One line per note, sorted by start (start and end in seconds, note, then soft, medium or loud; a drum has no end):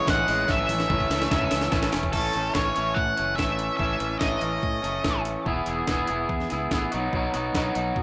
0.06 0.24 A1 medium
0.06 0.27 E3 loud
0.06 0.27 G#3 medium
0.06 0.28 C#4 medium
0.06 kick loud
0.06 snare loud
0.10 0.51 F#5 loud
0.27 0.45 A1 medium
0.27 0.48 E3 medium
0.27 0.48 G#3 medium
0.27 0.49 C#4 medium
0.27 open hi-hat medium
0.48 0.65 A1 medium
0.48 0.88 E3 medium
0.48 0.89 A3 loud
0.48 0.88 C#4 loud
0.48 1.90 E5 medium
0.48 kick loud
0.48 snare medium
0.58 high tom medium
0.69 0.86 A1 medium
0.69 open hi-hat medium
0.69 high tom medium
0.80 snare medium
0.89 1.07 A1 medium
0.89 1.09 E3 medium
0.89 1.09 A3 loud
0.89 1.10 C#4 medium
0.89 kick loud
0.89 mid tom medium
1.00 kick medium
1.10 1.27 C#2 loud
1.10 1.30 E3 medium
1.10 1.30 A3 medium
1.10 1.31 C#4 loud
1.10 snare medium
1.10 open hi-hat medium
1.22 snare medium
1.31 1.48 C#2 medium
1.31 1.70 E3 loud
1.31 1.71 A3 loud
1.31 1.71 C#4 loud
1.31 kick loud
1.31 snare loud
1.42 kick medium
1.51 1.69 C#2 medium
1.51 snare loud
1.51 open hi-hat medium
1.62 snare medium
1.71 1.89 A1 medium
1.71 1.91 E3 medium
1.71 1.92 A3 medium
1.71 1.93 C#4 medium
1.71 kick loud
1.71 snare medium
1.83 snare medium
1.92 2.10 E1 medium
1.92 2.12 E3 medium
1.92 2.13 A3 medium
1.92 2.13 C#4 medium
1.92 snare loud
1.92 open hi-hat medium
2.03 kick medium
2.13 2.29 A1 medium
2.13 2.54 E3 medium
2.13 2.37 A3 medium
2.13 2.34 C#4 medium
2.13 2.56 A4 medium
2.13 kick medium
2.13 crash medium
2.33 2.50 A1 medium
2.33 2.57 C#4 medium
2.33 closed hi-hat medium
2.38 2.55 A3 medium
2.54 2.71 A1 medium
2.54 3.36 E3 medium
2.54 2.78 A3 medium
2.54 2.75 C#4 loud
2.54 2.97 C#5 medium
2.54 kick loud
2.54 snare loud
2.76 2.92 A1 medium
2.76 3.18 A3 medium
2.76 3.15 C#4 medium
2.76 closed hi-hat medium
2.94 3.12 A2 medium
2.94 3.34 F#5 medium
2.94 kick loud
3.16 3.34 F#1 medium
3.16 3.36 A3 medium
3.16 3.38 C#4 medium
3.16 closed hi-hat medium
3.36 3.69 A1 medium
3.36 3.78 E3 medium
3.36 3.79 A3 medium
3.36 3.76 E5 medium
3.36 kick loud
3.36 snare loud
3.40 3.80 C#4 medium
3.59 closed hi-hat medium
3.77 3.95 A1 medium
3.77 4.19 E3 medium
3.77 4.00 A3 medium
3.77 4.17 E5 medium
3.77 kick loud
3.81 3.97 C#4 loud
3.98 4.16 A1 medium
3.98 4.20 A3 medium
3.98 4.21 C#4 medium
3.98 closed hi-hat medium
4.19 4.36 A1 medium
4.19 4.62 E3 medium
4.19 4.43 A3 medium
4.19 4.40 C#4 loud
4.19 5.20 D#5 medium
4.19 kick loud
4.19 snare loud
4.41 4.58 A1 medium
4.41 4.84 A3 medium
4.41 4.81 C#4 medium
4.41 closed hi-hat medium
4.63 4.78 A2 medium
4.63 kick loud
4.82 4.99 F#1 medium
4.82 5.04 A3 medium
4.82 5.05 C#4 medium
4.82 closed hi-hat medium
5.04 5.35 A1 medium
5.04 5.44 E3 medium
5.04 5.45 A3 medium
5.04 5.46 C#4 medium
5.04 kick loud
5.04 snare loud
5.25 closed hi-hat medium
5.45 5.62 E1 medium
5.45 5.87 E3 medium
5.45 5.71 B3 medium
5.45 5.68 E4 medium
5.45 5.66 G#4 medium
5.45 kick loud
5.66 5.83 E1 medium
5.66 5.89 E4 medium
5.66 5.90 G#4 medium
5.66 closed hi-hat medium
5.71 5.89 B3 medium
5.87 6.03 E1 medium
5.87 6.30 E3 medium
5.87 6.11 B3 medium
5.87 6.09 E4 medium
5.87 6.07 G#4 loud
5.87 kick loud
5.87 snare loud
6.07 6.25 E1 medium
6.07 6.53 B3 medium
6.07 6.51 E4 medium
6.07 6.49 G#4 medium
6.07 closed hi-hat medium
6.29 6.45 E2 medium
6.29 kick loud
6.40 snare soft
6.50 6.67 C#2 medium
6.50 6.72 B3 medium
6.50 6.72 E4 medium
6.50 6.73 G#4 medium
6.50 snare soft
6.50 closed hi-hat medium
6.71 6.87 A1 medium
6.71 6.91 E3 medium
6.71 6.94 B3 medium
6.71 6.92 E4 medium
6.71 6.91 G#4 medium
6.71 kick loud
6.71 snare loud
6.92 7.09 B1 medium
6.92 7.12 F#3 medium
6.92 7.14 B3 medium
6.92 7.14 D#4 medium
6.92 7.15 F#4 medium
6.92 closed hi-hat medium
7.13 7.28 B1 medium
7.13 7.53 F#3 medium
7.13 7.35 B3 medium
7.13 7.34 D#4 medium
7.13 7.32 F#4 medium
7.13 kick loud
7.34 7.50 B1 medium
7.34 7.54 B3 medium
7.34 7.55 D#4 medium
7.34 7.56 F#4 medium
7.34 closed hi-hat medium
7.54 7.70 B1 medium
7.54 7.96 F#3 medium
7.54 7.77 B3 medium
7.54 7.75 D#4 medium
7.54 7.73 F#4 loud
7.54 kick loud
7.54 snare loud
7.75 7.91 B1 medium
7.75 8.03 B3 medium
7.75 8.03 D#4 medium
7.75 8.03 F#4 medium
7.75 closed hi-hat medium
7.96 8.03 B2 medium
7.96 kick loud